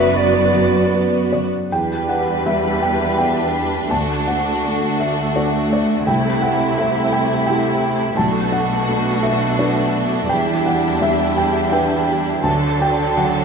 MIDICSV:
0, 0, Header, 1, 8, 480
1, 0, Start_track
1, 0, Key_signature, 1, "minor"
1, 0, Tempo, 781250
1, 1056, Time_signature, 3, 2, 24, 8
1, 1056, Tempo, 730816
1, 2976, Tempo, 708383
1, 7776, Tempo, 727273
1, 8911, End_track
2, 0, Start_track
2, 0, Title_t, "Flute"
2, 0, Program_c, 0, 73
2, 0, Note_on_c, 0, 76, 87
2, 98, Note_on_c, 0, 74, 59
2, 107, Note_off_c, 0, 76, 0
2, 821, Note_off_c, 0, 74, 0
2, 8911, End_track
3, 0, Start_track
3, 0, Title_t, "Felt piano"
3, 0, Program_c, 1, 0
3, 0, Control_c, 1, 64, 127
3, 0, Note_on_c, 1, 42, 51
3, 0, Note_on_c, 1, 54, 41
3, 0, Note_on_c, 1, 66, 46
3, 70, Note_off_c, 1, 54, 0
3, 72, Note_off_c, 1, 66, 0
3, 90, Note_on_c, 1, 59, 36
3, 93, Note_on_c, 1, 66, 42
3, 311, Note_off_c, 1, 59, 0
3, 312, Note_off_c, 1, 66, 0
3, 332, Note_on_c, 1, 54, 38
3, 335, Note_on_c, 1, 66, 38
3, 552, Note_off_c, 1, 54, 0
3, 554, Note_off_c, 1, 66, 0
3, 579, Note_on_c, 1, 59, 40
3, 581, Note_on_c, 1, 66, 43
3, 795, Note_off_c, 1, 59, 0
3, 797, Note_off_c, 1, 66, 0
3, 814, Note_on_c, 1, 74, 52
3, 823, Note_on_c, 1, 54, 38
3, 825, Note_on_c, 1, 66, 39
3, 1027, Note_off_c, 1, 42, 0
3, 1033, Note_off_c, 1, 54, 0
3, 1034, Note_off_c, 1, 66, 0
3, 1036, Note_off_c, 1, 74, 0
3, 1058, Note_on_c, 1, 40, 47
3, 1059, Note_on_c, 1, 79, 65
3, 1069, Control_c, 1, 64, 0
3, 1174, Control_c, 1, 64, 127
3, 1285, Note_off_c, 1, 79, 0
3, 1300, Note_on_c, 1, 78, 68
3, 1524, Note_off_c, 1, 78, 0
3, 1544, Note_on_c, 1, 76, 67
3, 1546, Note_on_c, 1, 55, 36
3, 1762, Note_off_c, 1, 76, 0
3, 1782, Note_on_c, 1, 79, 64
3, 1999, Note_off_c, 1, 79, 0
3, 2014, Note_on_c, 1, 79, 61
3, 2017, Note_on_c, 1, 59, 35
3, 2020, Note_on_c, 1, 62, 41
3, 2303, Note_off_c, 1, 55, 0
3, 2468, Note_off_c, 1, 79, 0
3, 2469, Note_off_c, 1, 40, 0
3, 2470, Note_off_c, 1, 59, 0
3, 2472, Note_off_c, 1, 62, 0
3, 2493, Note_on_c, 1, 81, 60
3, 2500, Note_on_c, 1, 38, 46
3, 2505, Control_c, 1, 64, 0
3, 2610, Control_c, 1, 64, 127
3, 2719, Note_off_c, 1, 81, 0
3, 2736, Note_on_c, 1, 78, 69
3, 2985, Note_on_c, 1, 57, 38
3, 3191, Note_off_c, 1, 78, 0
3, 3219, Note_on_c, 1, 76, 58
3, 3444, Note_off_c, 1, 76, 0
3, 3461, Note_on_c, 1, 74, 56
3, 3466, Note_on_c, 1, 62, 41
3, 3688, Note_off_c, 1, 74, 0
3, 3711, Note_on_c, 1, 74, 58
3, 3759, Note_off_c, 1, 57, 0
3, 3923, Note_off_c, 1, 62, 0
3, 3924, Note_off_c, 1, 38, 0
3, 3934, Note_off_c, 1, 74, 0
3, 3944, Note_on_c, 1, 79, 67
3, 3948, Note_on_c, 1, 36, 46
3, 3959, Control_c, 1, 64, 0
3, 4072, Control_c, 1, 64, 127
3, 4169, Note_off_c, 1, 79, 0
3, 4178, Note_on_c, 1, 78, 68
3, 4405, Note_off_c, 1, 78, 0
3, 4425, Note_on_c, 1, 76, 67
3, 4427, Note_on_c, 1, 57, 39
3, 4649, Note_off_c, 1, 76, 0
3, 4658, Note_on_c, 1, 79, 68
3, 4878, Note_off_c, 1, 79, 0
3, 4888, Note_on_c, 1, 79, 68
3, 4908, Note_on_c, 1, 64, 39
3, 4913, Note_on_c, 1, 67, 44
3, 5190, Note_off_c, 1, 57, 0
3, 5344, Note_off_c, 1, 79, 0
3, 5352, Note_off_c, 1, 36, 0
3, 5354, Note_off_c, 1, 64, 0
3, 5356, Note_off_c, 1, 67, 0
3, 5366, Note_on_c, 1, 81, 71
3, 5377, Note_on_c, 1, 35, 49
3, 5391, Control_c, 1, 64, 0
3, 5489, Control_c, 1, 64, 127
3, 5591, Note_off_c, 1, 81, 0
3, 5607, Note_on_c, 1, 78, 72
3, 5850, Note_on_c, 1, 57, 41
3, 6062, Note_off_c, 1, 78, 0
3, 6085, Note_on_c, 1, 76, 69
3, 6312, Note_off_c, 1, 76, 0
3, 6329, Note_on_c, 1, 74, 57
3, 6335, Note_on_c, 1, 62, 42
3, 6338, Note_on_c, 1, 71, 45
3, 6554, Note_off_c, 1, 74, 0
3, 6620, Note_off_c, 1, 57, 0
3, 6787, Note_off_c, 1, 35, 0
3, 6789, Note_off_c, 1, 62, 0
3, 6791, Note_off_c, 1, 71, 0
3, 6806, Note_on_c, 1, 79, 76
3, 6818, Note_on_c, 1, 40, 56
3, 6828, Control_c, 1, 64, 0
3, 6947, Control_c, 1, 64, 127
3, 7035, Note_off_c, 1, 79, 0
3, 7055, Note_on_c, 1, 78, 73
3, 7278, Note_off_c, 1, 78, 0
3, 7293, Note_on_c, 1, 55, 41
3, 7298, Note_on_c, 1, 76, 73
3, 7519, Note_off_c, 1, 76, 0
3, 7538, Note_on_c, 1, 79, 71
3, 7759, Note_off_c, 1, 79, 0
3, 7772, Note_on_c, 1, 62, 41
3, 7775, Note_on_c, 1, 71, 49
3, 7775, Note_on_c, 1, 79, 78
3, 8053, Note_off_c, 1, 55, 0
3, 8218, Note_off_c, 1, 62, 0
3, 8220, Note_off_c, 1, 40, 0
3, 8220, Note_off_c, 1, 71, 0
3, 8220, Note_off_c, 1, 79, 0
3, 8243, Note_on_c, 1, 38, 51
3, 8244, Note_on_c, 1, 81, 78
3, 8258, Control_c, 1, 64, 0
3, 8380, Control_c, 1, 64, 127
3, 8470, Note_off_c, 1, 81, 0
3, 8495, Note_on_c, 1, 79, 79
3, 8718, Note_off_c, 1, 79, 0
3, 8732, Note_on_c, 1, 54, 38
3, 8732, Note_on_c, 1, 78, 65
3, 8911, Note_off_c, 1, 38, 0
3, 8911, Note_off_c, 1, 54, 0
3, 8911, Note_off_c, 1, 78, 0
3, 8911, End_track
4, 0, Start_track
4, 0, Title_t, "Violin section"
4, 0, Program_c, 2, 48
4, 0, Note_on_c, 2, 74, 50
4, 931, Note_off_c, 2, 74, 0
4, 1057, Note_on_c, 2, 71, 53
4, 2469, Note_off_c, 2, 71, 0
4, 2501, Note_on_c, 2, 66, 54
4, 3924, Note_off_c, 2, 66, 0
4, 3949, Note_on_c, 2, 64, 53
4, 5353, Note_off_c, 2, 64, 0
4, 5373, Note_on_c, 2, 66, 59
4, 6812, Note_off_c, 2, 66, 0
4, 6813, Note_on_c, 2, 64, 56
4, 8218, Note_off_c, 2, 64, 0
4, 8249, Note_on_c, 2, 69, 58
4, 8911, Note_off_c, 2, 69, 0
4, 8911, End_track
5, 0, Start_track
5, 0, Title_t, "Violin section"
5, 0, Program_c, 3, 48
5, 0, Note_on_c, 3, 71, 57
5, 800, Note_off_c, 3, 71, 0
5, 1064, Note_on_c, 3, 62, 46
5, 3925, Note_off_c, 3, 62, 0
5, 3954, Note_on_c, 3, 64, 48
5, 5355, Note_off_c, 3, 64, 0
5, 5379, Note_on_c, 3, 62, 51
5, 8219, Note_off_c, 3, 62, 0
5, 8252, Note_on_c, 3, 62, 52
5, 8911, Note_off_c, 3, 62, 0
5, 8911, End_track
6, 0, Start_track
6, 0, Title_t, "Viola section"
6, 0, Program_c, 4, 48
6, 0, Note_on_c, 4, 59, 53
6, 0, Note_on_c, 4, 66, 51
6, 907, Note_off_c, 4, 59, 0
6, 907, Note_off_c, 4, 66, 0
6, 1062, Note_on_c, 4, 55, 50
6, 2471, Note_off_c, 4, 55, 0
6, 2503, Note_on_c, 4, 57, 52
6, 5357, Note_off_c, 4, 57, 0
6, 5371, Note_on_c, 4, 57, 54
6, 6784, Note_off_c, 4, 57, 0
6, 6812, Note_on_c, 4, 55, 52
6, 8218, Note_off_c, 4, 55, 0
6, 8244, Note_on_c, 4, 54, 54
6, 8911, Note_off_c, 4, 54, 0
6, 8911, End_track
7, 0, Start_track
7, 0, Title_t, "Cello section"
7, 0, Program_c, 5, 48
7, 0, Note_on_c, 5, 42, 54
7, 929, Note_off_c, 5, 42, 0
7, 1057, Note_on_c, 5, 40, 48
7, 2468, Note_off_c, 5, 40, 0
7, 2496, Note_on_c, 5, 38, 49
7, 3922, Note_off_c, 5, 38, 0
7, 3948, Note_on_c, 5, 48, 50
7, 5352, Note_off_c, 5, 48, 0
7, 5377, Note_on_c, 5, 47, 55
7, 6787, Note_off_c, 5, 47, 0
7, 6813, Note_on_c, 5, 40, 55
7, 8218, Note_off_c, 5, 40, 0
7, 8249, Note_on_c, 5, 50, 54
7, 8911, Note_off_c, 5, 50, 0
7, 8911, End_track
8, 0, Start_track
8, 0, Title_t, "Double bass section"
8, 0, Program_c, 6, 48
8, 0, Note_on_c, 6, 30, 57
8, 925, Note_off_c, 6, 30, 0
8, 8911, End_track
0, 0, End_of_file